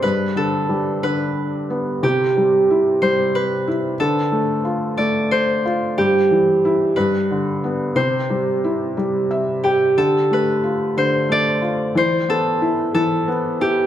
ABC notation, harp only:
X:1
M:6/8
L:1/8
Q:3/8=60
K:C
V:1 name="Harp"
B A2 B2 z | G3 c B2 | A3 d c2 | G3 B3 |
c4 z G | A B2 c d2 | c A2 A2 G |]